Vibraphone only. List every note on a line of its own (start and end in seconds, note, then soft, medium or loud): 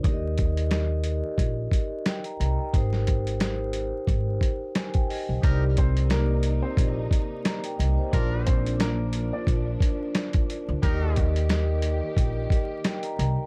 0.03 0.61 D#4 medium
0.03 0.61 G4 medium
0.03 0.62 A#4 medium
0.03 0.13 D5 medium
0.13 0.65 D#5 medium
0.69 1.82 D#4 medium
0.69 1.83 G4 medium
0.69 1.73 A#4 medium
0.69 1.73 D#5 medium
2.06 2.25 A#4 medium
2.06 2.25 G5 medium
2.25 2.38 A#5 medium
2.40 2.58 A#5 medium
2.59 2.74 A#4 medium
2.59 2.91 G5 medium
2.73 3.30 D#4 medium
2.73 3.31 G4 medium
2.73 3.31 A#4 medium
2.73 3.32 C5 loud
3.40 4.52 D#4 medium
3.40 4.53 G4 medium
3.40 4.53 A#4 medium
3.40 4.54 C5 loud
4.76 5.07 G#5 medium
4.94 5.08 G5 medium
5.09 5.28 G4 medium
5.09 5.41 D#5 medium
5.29 5.40 D#4 medium
5.29 5.61 C5 medium
5.41 5.99 D#4 medium
5.41 6.00 G4 medium
5.41 6.00 A#4 medium
5.41 6.01 D5 loud
6.09 7.22 D#4 medium
6.09 7.22 G4 medium
6.09 7.23 A#4 medium
6.09 7.23 D5 medium
7.45 7.64 A#5 medium
7.64 7.79 A#4 medium
7.64 7.78 G5 medium
7.79 7.98 G4 medium
7.79 7.97 D#5 medium
7.97 8.30 D#4 medium
7.97 8.30 C5 medium
8.11 8.69 D4 medium
8.11 8.70 F4 medium
8.11 8.70 A#4 medium
8.11 8.71 D5 loud
8.77 9.91 D4 medium
8.77 9.91 F4 medium
8.77 9.92 A#4 medium
8.77 8.88 C5 medium
8.87 9.96 D5 medium
10.82 11.39 D#4 loud
10.82 11.40 G4 medium
10.82 11.40 A#4 medium
10.82 10.91 D5 medium
10.92 11.44 D#5 loud
11.48 12.61 D#4 medium
11.48 12.62 G4 medium
11.48 12.51 A#4 medium
11.48 12.52 D#5 loud
12.85 13.04 A#4 medium
12.85 13.03 G5 medium
13.04 13.17 A#5 medium
13.18 13.37 A#5 medium
13.38 13.46 A#4 medium
13.38 13.46 G5 medium